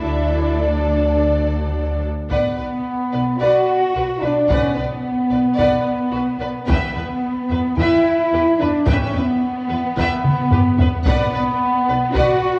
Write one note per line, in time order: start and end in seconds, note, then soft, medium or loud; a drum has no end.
0.01 2.05 D2 soft
0.01 2.05 F#3 soft
0.01 2.05 D4 soft
0.01 0.58 E4 medium
0.01 2.05 A4 soft
0.01 2.05 D5 soft
0.01 0.59 E5 medium
0.61 2.01 D4 medium
0.61 2.02 D5 soft
2.30 2.38 B1 medium
2.30 3.37 B3 medium
2.30 3.37 B3 soft
2.30 2.56 B4 medium
2.30 2.55 D5 soft
2.30 2.56 F#5 soft
2.30 taiko medium
2.57 2.66 B1 soft
2.57 2.65 B4 soft
2.57 2.67 B4 soft
2.57 2.68 D5 soft
3.12 3.22 B1 soft
3.12 3.20 B4 soft
3.12 3.22 B4 soft
3.12 3.22 D5 soft
3.39 3.48 B1 medium
3.39 4.22 F#4 medium
3.39 4.24 F#4 medium
3.39 3.67 B4 medium
3.39 3.66 D5 medium
3.43 3.68 F#5 soft
3.93 4.04 B1 soft
3.93 4.01 F#4 soft
3.97 4.05 B4 soft
3.97 4.07 B4 soft
4.21 4.30 B1 soft
4.21 4.49 D4 medium
4.21 4.50 D4 medium
4.21 4.29 B4 soft
4.21 4.32 B4 soft
4.26 4.34 D5 soft
4.48 4.56 B1 medium
4.48 4.77 C#4 medium
4.48 4.78 C#4 soft
4.48 4.75 B4 medium
4.48 4.74 D5 medium
4.48 4.76 F#5 medium
4.48 taiko medium
4.75 4.85 B1 soft
4.75 6.65 B3 medium
4.75 4.83 B4 soft
4.75 4.86 B4 soft
4.75 4.86 D5 soft
5.30 5.38 B1 soft
5.30 5.38 B4 soft
5.30 5.39 D5 soft
5.34 5.42 B4 soft
5.56 5.66 B1 medium
5.56 5.83 D5 medium
5.56 5.85 F#5 medium
5.56 taiko medium
5.61 5.85 B4 medium
6.11 6.20 B1 soft
6.11 6.19 F#4 soft
6.11 6.22 B4 soft
6.15 6.23 B4 soft
6.39 6.47 B1 soft
6.39 6.49 B4 soft
6.39 6.48 D5 soft
6.66 6.76 E2 medium
6.66 7.75 B3 medium
6.66 7.76 B3 medium
6.66 6.94 B4 medium
6.66 6.93 G5 medium
6.66 taiko medium
6.71 6.95 E5 medium
6.94 7.02 E2 soft
6.94 7.04 B4 soft
6.94 7.05 B4 soft
6.94 7.04 E5 soft
7.49 7.57 E2 soft
7.49 7.59 B4 soft
7.49 7.60 B4 soft
7.49 7.58 E5 soft
7.77 7.85 E2 medium
7.77 8.59 E4 medium
7.77 8.04 B4 medium
7.77 8.04 E5 medium
7.77 8.03 G5 medium
7.77 taiko medium
8.32 8.40 E2 soft
8.32 8.41 G4 medium
8.32 8.41 B4 soft
8.32 8.42 B4 soft
8.59 8.67 E2 soft
8.59 8.88 D4 medium
8.59 8.69 B4 medium
8.59 8.68 E5 soft
8.87 8.95 E2 medium
8.87 9.15 C#4 medium
8.87 9.13 B4 medium
8.87 9.13 E5 medium
8.87 9.13 G5 medium
8.87 taiko medium
9.14 9.22 E2 soft
9.14 11.05 B3 medium
9.14 10.88 B3 medium
9.14 9.22 B4 soft
9.14 9.24 B4 soft
9.14 9.24 E5 soft
9.69 9.77 E2 soft
9.69 9.77 B4 soft
9.69 9.79 B4 medium
9.69 9.78 E5 soft
9.96 10.05 E2 medium
9.96 10.22 B4 medium
9.96 10.23 E5 medium
9.96 10.23 G5 medium
9.96 taiko medium
10.24 taiko mid medium
10.51 10.59 E2 soft
10.51 10.60 G4 medium
10.51 10.60 B4 soft
10.51 10.60 B4 medium
10.51 taiko low-mid medium
10.78 10.86 E2 soft
10.78 10.88 B4 medium
10.78 10.89 B4 medium
10.78 10.87 E5 soft
10.78 taiko low medium
11.05 11.13 B1 medium
11.05 12.13 B3 medium
11.05 11.32 B4 medium
11.05 11.31 D5 medium
11.05 11.32 F#5 medium
11.05 taiko medium
11.34 11.42 B1 medium
11.34 11.42 B4 medium
11.34 11.43 B4 soft
11.34 11.43 D5 soft
11.88 11.96 B1 soft
11.88 11.97 B4 medium
11.88 11.98 B4 soft
11.88 11.97 D5 soft
12.15 12.24 B1 medium
12.15 12.59 F#4 medium
12.15 12.41 B4 medium
12.15 12.41 D5 medium
12.15 12.42 F#5 medium
12.15 taiko medium